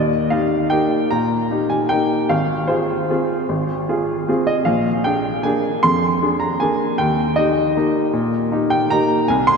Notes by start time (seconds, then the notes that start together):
Already playing: D#2 D#5
0.30 D#4 G4 F5
0.70 A#3 D#4 G4 G5
1.11 A#2 A#5
1.51 D#4 G4
1.70 G#5
1.89 A#3 D#4 G4 G5
2.29 G#1 F5
2.67 F4 G#4 C5
3.10 C4 F4 G#4
3.49 G#1
3.89 F4 G#4
4.28 C4 F4 G#4
4.47 D#5
4.65 A#1 F5
5.04 D4 G#4 G5
5.43 A#3 D4 G#4 G#5
5.83 F2 C6
6.23 D4 G#4
6.40 A#5
6.60 A#3 D4 G#4 G#5
6.98 D#2 G5
7.36 D#4 G4 D#5
7.77 A#3 D#4 G4
8.13 A#2
8.52 D#4 G4
8.70 G5
8.90 A#3 D#4 G4 A#5
9.28 C2 G#5
9.47 C6